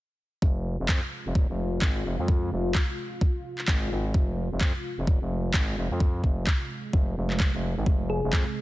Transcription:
0.42 fm bass F1, analog synth pad C3 G#3 F4, kick
0.79 fm bass F1
0.89 fm bass F2, kick, clap
1.26 fm bass F1
1.35 kick
1.49 fm bass F1
1.82 fm bass G#1, kick, clap
2.05 fm bass F1
2.19 fm bass F2
2.28 kick
2.52 fm bass F1
2.75 kick, clap
3.21 kick
3.58 clap
3.68 fm bass G#1, kick, clap
3.91 fm bass G#1
4.14 kick
4.51 fm bass F1
4.61 fm bass F2, kick, clap
4.98 fm bass F1
5.07 kick
5.21 fm bass F1
5.54 fm bass G#1, kick, clap
5.77 fm bass F1
5.91 fm bass F2
6.00 kick
6.24 fm bass F1, kick
6.47 kick, clap
6.93 fm bass F1, kick
7.17 fm bass F1
7.30 clap
7.40 kick, clap
7.53 fm bass F1
7.77 fm bass G#1
7.86 analog synth pad C4, kick
8.10 synth pluck G#4
8.23 fm bass F1
8.33 kick, clap

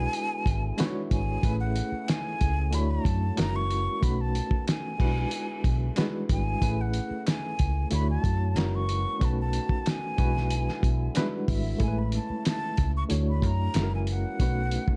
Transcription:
Already playing: french horn section D3 B3 E4 G#4, reed electric piano G#3 D4 E4 F#4 B4, flute G#5
0.13 closed hi-hat
0.46 fingered electric bass G#1, kick, closed hi-hat
0.78 reed electric piano G#3 D4 E4 F#4 B4, snare, clap, closed hi-hat
0.87 reed electric piano C#5
1.11 fingered electric bass G#1, flute G#5, kick, closed hi-hat
1.42 fingered electric bass A1, french horn section C#3 A3 E4, reed electric piano A3 C#4 E4 G#4 B4, kick, closed hi-hat
1.60 flute F#5
1.76 closed hi-hat
1.92 muted fingered electric bass stroke
2.08 flute G#5, snare, clap, closed hi-hat
2.41 fingered electric bass C#2, kick, closed hi-hat
2.71 fingered electric bass D2, french horn section D3 F#4 C#5, reed electric piano A3 D4 E4 F#4 C#5, flute B5, closed hi-hat
2.91 flute A5
3.05 fingered electric bass F#2, kick, closed hi-hat
3.36 fingered electric bass F#1, french horn section E3 A#3, reed electric piano G#3 C#4 E4 F#4 A#4, flute A#5, clap, closed hi-hat
3.40 snare
3.56 flute C#6
3.71 closed hi-hat
4.01 fingered electric bass B1, french horn section D#3 A3 B3, reed electric piano A3 C#4 D#4 F#4 B4, flute B5, kick, closed hi-hat
4.21 flute A5
4.35 closed hi-hat
4.51 muted fingered electric bass stroke, kick
4.68 flute G#5, snare, clap, closed hi-hat
4.98 fingered electric bass B1, french horn section D3 B3 E4 G#4, reed electric piano G#3 D4 E4 F#4 B4, kick, crash
5.31 closed hi-hat
5.64 fingered electric bass B1, kick, closed hi-hat
5.95 reed electric piano G3 D4 E4 F#4 B4, snare, clap, closed hi-hat
6.02 reed electric piano G#3
6.29 fingered electric bass G#1, flute G#5, kick, closed hi-hat
6.61 fingered electric bass A1, french horn section C#3 A3, reed electric piano A3 C#4 E4 G#4 B4, kick, closed hi-hat
6.81 flute F#5
6.93 closed hi-hat
7.11 muted fingered electric bass stroke
7.27 flute G#5, snare, clap, closed hi-hat
7.59 fingered electric bass C#2, kick, closed hi-hat
7.90 fingered electric bass D2, french horn section D3 A3 F#4 C#5, reed electric piano A3 D4 E4 F#4 C#5, flute B5, closed hi-hat
8.10 flute A5
8.24 fingered electric bass F#2, kick, closed hi-hat
8.55 fingered electric bass F#1, french horn section E3 A#3 F#4, reed electric piano G#3 C#4 E4 F#4 A#4, flute A#5, snare, clap, closed hi-hat
8.75 flute C#6
8.89 closed hi-hat
9.19 fingered electric bass B1, french horn section D#3 A3 B3, reed electric piano A3 C#4 D#4 F#4 B4, kick, closed hi-hat
9.25 flute A5
9.41 flute A5
9.53 closed hi-hat
9.69 muted fingered electric bass stroke, kick
9.86 flute G#5, snare, clap, closed hi-hat
10.17 fingered electric bass B1, french horn section D3 E3 B3 E4, reed electric piano G#3 D4 E4 F#4 B4, kick, closed hi-hat
10.37 snare
10.50 closed hi-hat
10.69 snare
10.83 fingered electric bass B1, kick, closed hi-hat
11.14 reed electric piano G3 D4 E4 F#4 B4, snare, clap, closed hi-hat
11.21 reed electric piano G#3
11.48 fingered electric bass G#1, flute E5, kick, open hi-hat
11.79 fingered electric bass A1, french horn section C#3, reed electric piano G#3 A3 C#4 E4 A4, flute G#5, kick, closed hi-hat
11.88 reed electric piano B4
11.99 flute B5
12.12 flute A5, closed hi-hat
12.30 muted fingered electric bass stroke
12.45 flute A5, snare, clap, closed hi-hat
12.77 fingered electric bass C#2, kick, closed hi-hat
12.97 flute C#6
13.09 fingered electric bass D2, french horn section D3 F#4 C#5, reed electric piano A3 D4 E4 F#4 C#5, closed hi-hat
13.30 flute B5
13.42 fingered electric bass F#2, flute A#5, kick, closed hi-hat
13.74 fingered electric bass F#1, french horn section E3 A#3 C#4, reed electric piano G#3 C#4 E4 F#4 A4, snare, clap, closed hi-hat
13.83 reed electric piano A#4
13.95 flute G#5
14.07 flute F#5, closed hi-hat
14.39 fingered electric bass B1, french horn section D#3 A3 B3 F#4, reed electric piano A3 C#4 D4 F#4 B4, kick, closed hi-hat
14.47 reed electric piano D#4
14.71 closed hi-hat
14.88 muted fingered electric bass stroke, kick

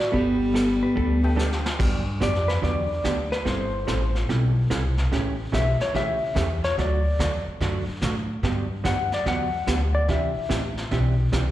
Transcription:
Already playing: honky-tonk piano F#3 A3 D4 E4, fiddle D4, electric slide guitar D5
0.12 upright bass G1, hollow-body jazz guitar G3 B3 D4 A4, fiddle G3, electric slide guitar B3 G4, brush sweep, kick
0.54 hollow-body jazz guitar G3 B3 D4 A4, snare, hi-hat pedal
0.83 pedal steel guitar B4
0.96 upright bass D2, hollow-body jazz guitar G3 B3 D4 A4, brush sweep, kick
1.23 honky-tonk piano A3 B3 D4 G4
1.36 hollow-body jazz guitar G3 B3 D4 A4, pedal steel guitar G4, snare, hi-hat pedal
1.52 snare
1.66 snare
1.79 upright bass G2, hollow-body jazz guitar D3 F#3 B3 D4 G4, brush sweep, kick, snare, crash
2.20 upright bass F2, hollow-body jazz guitar D3 F#3 B3 D4 G4, electric slide guitar D5, kick, snare, hi-hat pedal
2.35 snare
2.48 electric slide guitar B4, snare
2.62 upright bass E2, hollow-body jazz guitar D3 F#3 B3 D4 G4, electric slide guitar D5, brush sweep, kick, snare
3.04 upright bass D2, hollow-body jazz guitar D3 F#3 B3 D4 G4, kick, snare, hi-hat pedal
3.32 electric slide guitar B4, snare
3.45 upright bass G1, hollow-body jazz guitar G3 C4 E4 A4, electric slide guitar C5, brush sweep, kick, snare
3.87 upright bass A1, hollow-body jazz guitar G3 C4 E4 A4, kick, snare, hi-hat pedal
4.15 snare
4.29 upright bass B1, hollow-body jazz guitar G3 C4 E4 A4, brush sweep, kick, snare
4.70 upright bass C2, hollow-body jazz guitar G3 C4 E4 A4, kick, snare, hi-hat pedal
4.98 snare
5.12 upright bass A1, hollow-body jazz guitar C#3 E3 A3 C#4 G4, brush sweep, kick, snare
5.52 upright bass B1, hollow-body jazz guitar C#3 E3 A3 C#4 G4, electric slide guitar E5, kick, snare, hi-hat pedal
5.80 electric slide guitar C#5, muted upright bass stroke, snare
5.94 upright bass C#2, hollow-body jazz guitar C#3 E3 A3 C#4 G4, electric slide guitar E5, brush sweep, kick, snare
6.35 upright bass E2, hollow-body jazz guitar C#3 E3 A3 C#4 G4, kick, snare, hi-hat pedal
6.64 electric slide guitar C#5, snare
6.78 upright bass D2, hollow-body jazz guitar D3 F#3 A3 D4 F#4, electric slide guitar D5, brush sweep, kick, snare
7.19 upright bass E2, hollow-body jazz guitar D3 F#3 A3 D4 F#4, kick, snare, hi-hat pedal
7.47 muted upright bass stroke
7.60 upright bass F#2, hollow-body jazz guitar D3 F#3 A3 D4 F#4, brush sweep, kick, snare
7.88 muted upright bass stroke
8.02 upright bass A2, hollow-body jazz guitar D3 F#3 A3 D4 F#4, kick, snare, hi-hat pedal
8.43 upright bass G2, hollow-body jazz guitar D3 F#3 B3 D4 G4, brush sweep, kick, snare
8.84 upright bass F#2, hollow-body jazz guitar D3 F#3 B3 D4 G4, electric slide guitar F#5, kick, snare, hi-hat pedal
9.12 electric slide guitar D5, snare
9.26 upright bass E2, hollow-body jazz guitar D3 F#3 B3 D4 G4, electric slide guitar F#5, brush sweep, kick, snare
9.67 upright bass D2, hollow-body jazz guitar D3 F#3 B3 D4 G4, kick, snare, hi-hat pedal
9.95 electric slide guitar D5
10.08 upright bass C2, hollow-body jazz guitar C3 E3 D4 G4, electric slide guitar E5, brush sweep, kick, snare
10.36 muted upright bass stroke
10.49 upright bass A1, hollow-body jazz guitar C3 E3 D4 G4, kick, snare, hi-hat pedal
10.77 snare
10.91 upright bass B1, hollow-body jazz guitar C3 E3 D4 G4, brush sweep, kick, snare
11.32 upright bass C2, hollow-body jazz guitar C3 E3 D4 G4, kick, snare, hi-hat pedal

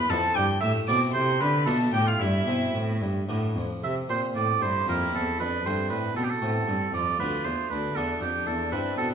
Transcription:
Already playing: oboe B4, violin B5
0.10 cello F2, harpsichord F2 B3 E4, oboe A4, violin A5
0.35 harpsichord G2, cello G2, oboe G4, violin G5
0.61 harpsichord A2, cello A2, oboe E5, violin E6
0.88 harpsichord B2 A3 C4 E4, cello B2, oboe D5, violin D6
1.14 harpsichord C3, cello C3, oboe C5, violin C6
1.41 cello D3, harpsichord D3, oboe B4, violin B5
1.66 cello B2, harpsichord B2 A3 D4 F4, oboe A4, violin A5
1.93 cello A2, harpsichord A2, oboe G4, violin G5
2.07 oboe F4, violin F5
2.20 cello G2, harpsichord G2, oboe E4, violin E5
2.47 cello B2, harpsichord B2 C4 E4
2.75 cello A2, harpsichord A2
3.02 cello G2, harpsichord G2
3.29 harpsichord A2 B3 D4, cello A2
3.56 cello F2, harpsichord F2
3.82 cello C3, harpsichord C3, oboe E5
4.09 harpsichord A#2 A#3 C4, cello A#2, oboe C5
4.35 harpsichord A2, cello A2, oboe D5
4.61 harpsichord G2, cello G2, violin E4, oboe C5
4.88 cello F2, harpsichord F2 A#3 C4, oboe A#4
5.13 cello E2, harpsichord E2, oboe A4
5.39 harpsichord F2, cello F2, violin D4, oboe B4
5.65 cello G2, harpsichord G2 A3 C4, oboe C5
5.90 harpsichord A2, cello A2, oboe B4
6.16 cello B2, harpsichord B2, violin C4, oboe A4
6.23 oboe G4
6.30 oboe A4
6.42 cello A2, harpsichord A2 A3 C4, violin B3
6.67 cello G2, harpsichord G2, violin C4
6.93 cello F2, harpsichord F2, violin F4, oboe D5
7.19 cello D2, harpsichord D2 B3 D4, oboe B4
7.44 harpsichord E2, cello E2, oboe C5
7.70 cello D2, harpsichord D2, violin D4, oboe B4
7.95 cello E2, harpsichord E2 B3 D4, oboe A4
8.21 harpsichord F2, cello F2, oboe G4
8.47 cello E2, harpsichord E2, oboe A4
8.72 harpsichord G2 C4 E4, cello G2, oboe B4
8.97 cello B2, harpsichord B2, oboe A4

